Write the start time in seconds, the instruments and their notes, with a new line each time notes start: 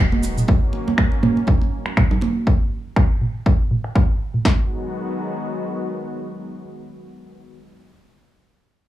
Already playing: analog synth pad D#3 F#3 G#3 B3 F#4
0.00 fm bass D#1
0.12 high conga
0.23 muted conga, cabasa
0.37 mid tom, cabasa
0.48 analog synth pad A#3 C#4, kick, muted conga
0.73 muted conga
0.88 high conga
0.98 finger snap, kick, high conga
1.12 muted conga
1.23 mid tom, high conga
1.37 muted conga
1.47 kick, low conga
1.61 muted conga
1.86 finger snap, muted conga
1.97 finger snap, kick, mid tom
2.11 low conga
2.21 muted conga, high conga
2.47 kick
2.96 finger snap, kick
3.21 mid tom
3.46 kick
3.71 mid tom
3.84 finger snap
3.95 finger snap, kick
4.34 mid tom
4.45 analog synth pad D#3 F#3 G#3 B3 F#4, kick, snare